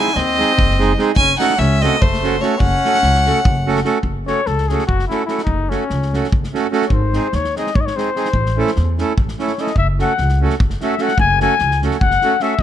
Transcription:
Already playing: E4 G#5
0.08 snare
0.15 D#2 C4 D#5, snare
0.38 G#3 C4 D#4 G#4, snare
0.58 F#1, kick
0.70 snare
0.78 G#3 C4 D#4 G#4, snare
0.98 G#3 C4 D#4 G#4, snare
1.15 F#1 C#4 G#5, kick
1.38 A3 C#4 D#4 F#4 A4 F#5, snare
1.50 snare
1.56 C#2 C#4 E5, snare
1.80 A3 C4 C#4 F#4 A4 D#5, snare
1.98 F#1 A3 C5, kick
2.14 snare
2.22 A3 C#4 F#4 A4, snare
2.39 A3 C#4 F#4 A4 C#5, snare
2.58 F#1 C#4 F#5, kick
2.84 A3 C#4 F#4 A4, snare
2.94 snare
3.03 C#2, snare
3.15 snare
3.25 A3 C#4 F#4 A4, snare
3.45 F#1, kick
3.66 A3 C#4 F#4 A4
3.76 snare
3.85 A3 C#4 F#4 A4, snare
4.03 F#1, kick
4.26 A3 C#4 F#4 A4 C#5, snare
4.46 C#2 A4, snare
4.58 snare
4.68 A3 C#4 F#4 G#4 A4, snare
4.79 snare
4.87 F#1 F#4, kick
4.99 snare
5.08 A3 C#4 E4 F#4, snare
5.12 A4
5.25 A3 C#4 E4 F#4, snare
5.29 A4
5.38 snare
5.43 D#4, kick
5.47 F#1
5.69 A3 C#4 F#4 A4, snare
5.90 C#2, snare
6.02 snare
6.13 A3 C#4 F#4 A4, snare
6.24 snare
6.32 F#1, kick
6.44 snare
6.53 A3 C#4 F#4 A4, snare
6.71 A3 C#4 F#4 A4, snare
6.82 snare
6.86 C#5
6.90 G#1 C5, kick
7.13 G#3 C4 D#4 G#4, snare
7.32 D#2 C#5, snare
7.44 snare
7.56 G#3 C4 D#4 G#4 D#5, snare
7.67 snare
7.75 G#1 C#5, kick
7.80 D#5
7.86 C#5, snare
7.95 G#3 C4 D#4 G#4 C5, snare
8.15 G#3 C4 D#4 G#4, snare
8.25 snare
8.33 A1, kick
8.46 snare
8.57 A3 C#4 E4 A4
8.67 snare
8.76 E2, snare
8.98 A3 C#4 E4 A4, snare
9.18 A1, kick
9.28 snare
9.39 A3 C#4 E4 A4 C#5, snare
9.48 snare
9.58 A3 C#4 E4 A4 D#5, snare
9.67 snare
9.76 F#1 E5, kick
9.99 A3 C#4 F#4 A4 F#5, snare
10.18 C#2, snare
10.29 snare
10.41 A3 C#4 F#4 A4
10.50 snare
10.60 F#1, kick
10.70 snare
10.81 A3 C#4 F#4 A4 E5, snare
10.98 A3 C#4 F#4 A4 F#5, snare
11.09 snare
11.18 F#1 G#5, kick
11.40 A3 C#4 F#4 A4 G#5, snare
11.59 C#2, snare
11.71 snare
11.82 A3 C#4 F#4 A4, snare
11.91 snare
12.01 F#1 F#5, kick
12.11 snare
12.21 A3 C#4 F#4 A4, snare
12.40 A3 C#4 F#4 A4 E5, snare
12.59 kick

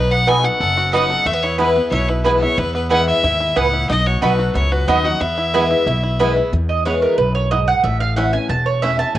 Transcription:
Already playing: B1 B2 D#4 B4
0.11 B3 F#5
0.27 F#3 B3 D#4 F#4 A4 D#5 G#5 B5
0.44 B3 D#4 F#4 F#5
0.60 F#1 F#2 A4
0.77 F#4
0.93 F#3 B3 D#4 F#4 D#5 F#5 B5
1.10 D#4 F#4 A4
1.26 E2 A3 E5
1.33 B3
1.43 E4 C#5
1.58 E3 G#3 B3 E4 B4 G#5
1.76 B3 E4
1.92 B1 B2 E4 C#5
2.09 E4 B4
2.24 E3 G#3 B3 E4 B4 G#5
2.42 B3 E4 C#5
2.58 E2 E4 B4
2.74 B3 B4
2.90 E3 G#3 B3 E4 B4 F#5 G#5
3.08 B3 E5
3.23 D#2 G#2 E4
3.40 E4
3.56 C#2 A2 B3 E4 B4 F#5 G#5
3.73 E4
3.89 B1 B2 D#4 D#5
4.06 F#4 C#5
4.22 B1 F#3 B3 D#4 F#4 A4 B4 D#5 B5
4.39 F#4
4.55 C#2 F#2 B3 C#5
4.72 F#4 B4
4.88 D#2 F#3 B3 D#4 F#4 D#5 B5
5.04 D#4 F#4 F#5
5.21 E2 B3 E5
5.38 E4
5.54 E3 G#3 B3 E4 B4 G#5
5.71 E4
5.87 B1 B2 E4
6.04 E4
6.19 E3 G#3 B3 E4 B4 G#5
6.36 B3 E4
6.53 E2
6.69 D#5
6.85 E3 G#3 B3 E4 C#5
7.02 A#4
7.18 B1 F#2 B4
7.35 C#5
7.51 G#2 B3 E4 D#5
7.68 F#5
7.84 A1 A2 E5
8.00 F5
8.16 E3 A3 C#4 E4 F#5
8.33 C#4 E4 G#5
8.49 E1 E2 A5
8.66 C#5
8.82 E3 A3 C#4 E4 E5
8.99 C#4 E4 A5
9.15 C#2 C#3 G#5

